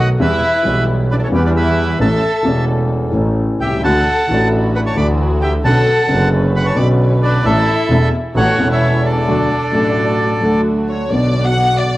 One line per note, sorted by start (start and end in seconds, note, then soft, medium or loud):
0.00 0.16 B1 medium
0.00 0.17 B1 medium
0.00 0.17 B2 medium
0.00 0.16 D#3 medium
0.00 0.17 A3 medium
0.00 0.17 B3 medium
0.00 0.18 F#4 medium
0.20 0.39 E2 medium
0.20 0.39 E3 medium
0.20 0.39 G3 medium
0.20 0.39 B3 medium
0.20 0.84 E4 medium
0.20 0.39 G4 medium
0.20 0.84 B4 medium
0.20 0.84 E5 medium
0.63 1.29 B1 medium
0.63 1.29 B2 medium
0.63 1.28 E3 medium
0.63 1.29 G3 medium
0.63 1.30 B3 medium
0.67 1.30 G4 medium
1.11 1.15 D4 medium
1.11 1.14 B4 medium
1.11 1.16 D5 medium
1.19 1.21 D4 soft
1.19 1.27 A4 medium
1.19 1.21 D5 medium
1.24 1.28 C#4 medium
1.24 1.28 C#5 medium
1.31 1.96 E2 medium
1.31 1.97 E3 medium
1.31 1.96 G3 medium
1.31 1.97 B3 medium
1.31 1.44 B3 medium
1.31 1.98 G4 medium
1.31 1.44 G4 medium
1.35 1.43 B4 medium
1.45 1.51 D4 medium
1.45 1.50 B4 medium
1.45 1.50 D5 medium
1.56 1.98 E4 medium
1.56 1.98 B4 medium
1.56 1.99 E5 medium
1.99 2.19 A1 medium
1.99 2.19 A2 medium
1.99 2.19 E3 medium
1.99 2.19 A3 medium
1.99 2.20 C#4 medium
1.99 2.20 A4 medium
1.99 2.65 A4 medium
1.99 2.65 E5 medium
1.99 2.65 A5 medium
2.43 3.10 E1 medium
2.43 3.10 E2 medium
2.43 3.09 E3 medium
2.43 3.10 A3 medium
2.43 3.11 C#4 medium
2.47 3.11 A4 medium
3.12 3.79 A1 medium
3.12 3.59 A1 medium
3.12 3.79 A2 medium
3.12 3.78 E3 medium
3.12 3.79 A3 medium
3.12 3.80 C#4 medium
3.12 3.80 A4 medium
3.60 3.81 C2 medium
3.60 3.82 G4 medium
3.60 3.82 E5 medium
3.60 3.82 G5 medium
3.66 3.72 B1 soft
3.72 3.78 C2 medium
3.79 3.84 C#2 medium
3.79 4.02 D2 medium
3.79 4.02 D4 medium
3.83 4.03 D2 medium
3.83 4.03 D3 medium
3.83 4.03 E3 medium
3.83 4.03 A3 medium
3.83 4.03 D4 medium
3.83 4.03 E4 medium
3.83 4.02 F#4 medium
3.83 4.03 F#4 medium
3.83 4.48 A4 medium
3.83 4.48 F#5 medium
3.83 4.48 A5 medium
4.28 4.93 A1 medium
4.28 4.95 A1 medium
4.28 4.95 A2 medium
4.28 4.93 E3 medium
4.28 4.94 A3 medium
4.28 4.93 D4 medium
4.28 4.95 D4 medium
4.28 4.94 E4 medium
4.28 4.93 F#4 medium
4.33 4.96 F#4 medium
4.75 4.80 B4 medium
4.75 4.80 F#5 medium
4.75 4.80 B5 medium
4.85 4.96 C#5 medium
4.85 4.97 A5 medium
4.85 4.96 C#6 medium
4.95 5.61 D2 medium
4.95 5.62 D2 medium
4.95 5.61 D3 medium
4.95 5.61 E3 medium
4.95 5.61 A3 medium
4.95 5.61 D4 medium
4.95 5.62 D4 medium
4.95 5.61 E4 medium
4.95 5.61 F#4 medium
4.95 5.08 D5 medium
4.95 5.07 B5 medium
4.95 5.07 D6 medium
4.99 5.63 F#4 medium
5.42 5.52 G4 medium
5.42 5.54 E5 medium
5.42 5.52 G5 medium
5.64 5.83 B1 medium
5.64 5.84 B1 medium
5.64 5.84 B2 medium
5.64 5.84 D3 medium
5.64 5.84 B3 medium
5.64 5.84 C#4 medium
5.64 5.84 D4 medium
5.64 5.84 F#4 medium
5.64 6.29 A4 medium
5.64 5.84 B4 medium
5.64 6.29 F#5 medium
5.64 6.29 A5 loud
6.07 6.74 F#1 medium
6.07 6.74 F#1 loud
6.07 6.74 F#2 medium
6.07 6.73 D3 medium
6.07 6.73 B3 medium
6.07 6.74 C#4 medium
6.07 6.75 F#4 medium
6.07 6.74 B4 medium
6.56 6.66 B4 medium
6.56 6.67 F#5 medium
6.56 6.66 B5 medium
6.65 6.77 C#5 medium
6.65 6.77 A5 medium
6.65 6.77 C#6 medium
6.75 7.41 B1 medium
6.75 7.41 B2 medium
6.75 7.40 D3 medium
6.75 7.41 B3 medium
6.75 7.41 C#4 medium
6.75 7.42 C#4 medium
6.75 7.42 F#4 medium
6.75 7.42 B4 medium
6.75 6.87 D5 medium
6.75 6.89 B5 medium
6.75 6.87 D6 medium
7.22 7.43 D4 medium
7.22 7.44 B4 medium
7.22 7.46 D5 medium
7.45 7.64 A1 medium
7.45 7.64 A2 medium
7.45 7.64 E3 medium
7.45 7.64 A3 medium
7.45 7.64 D4 medium
7.45 8.09 E4 medium
7.45 7.64 E4 medium
7.45 7.64 A4 medium
7.45 8.09 A4 medium
7.45 8.09 E5 loud
7.89 8.09 E1 medium
7.89 8.10 E1 medium
7.89 8.09 E2 medium
7.89 8.09 E3 medium
7.89 8.09 A3 medium
7.89 8.09 D4 medium
7.89 8.10 D4 medium
7.89 8.09 E4 medium
7.89 8.09 A4 medium
7.89 8.10 A4 medium
8.35 8.54 A1 medium
8.35 8.55 A1 medium
8.35 8.55 A2 medium
8.35 8.55 E3 medium
8.35 8.55 B3 medium
8.35 8.55 C#4 medium
8.35 8.67 F#4 medium
8.35 8.55 A4 medium
8.35 8.68 C#5 medium
8.35 8.68 F#5 loud
8.58 9.23 E1 medium
8.58 9.24 E1 medium
8.58 9.24 E2 medium
8.58 9.23 E3 medium
8.58 9.24 B3 medium
8.58 9.24 C#4 medium
8.58 9.24 A4 medium
8.58 9.25 A4 medium
8.70 9.01 E4 medium
8.70 9.03 C#5 medium
8.70 9.06 E5 medium
9.04 10.60 D4 medium
9.04 10.61 A4 medium
9.04 10.61 D5 medium
9.27 9.47 D2 medium
9.27 9.47 D3 medium
9.27 9.47 F#3 medium
9.27 9.46 A3 medium
9.27 9.47 A3 medium
9.27 9.46 D4 medium
9.27 9.47 D4 medium
9.27 9.47 F#4 medium
9.27 9.47 A4 medium
9.72 10.38 A1 medium
9.72 10.38 A2 medium
9.72 10.37 F#3 medium
9.72 10.38 A3 medium
9.72 10.38 D4 medium
9.72 10.39 D4 medium
9.72 10.38 F#4 medium
9.72 10.39 A4 medium
10.41 11.08 D2 medium
10.41 11.08 D3 medium
10.41 11.07 F#3 medium
10.41 11.08 A3 medium
10.41 11.08 D4 medium
10.41 11.08 F#4 medium
10.45 11.09 A4 medium
10.88 11.09 C#5 medium
11.10 11.97 B1 medium
11.10 11.97 B2 medium
11.10 11.97 D3 medium
11.10 11.97 F#3 soft
11.10 11.97 B3 medium
11.10 11.97 B3 soft
11.10 11.97 D4 medium
11.10 11.97 F#4 medium
11.10 11.46 D5 medium
11.14 11.97 F#4 medium
11.45 11.80 F#5 loud
11.79 11.97 D5 medium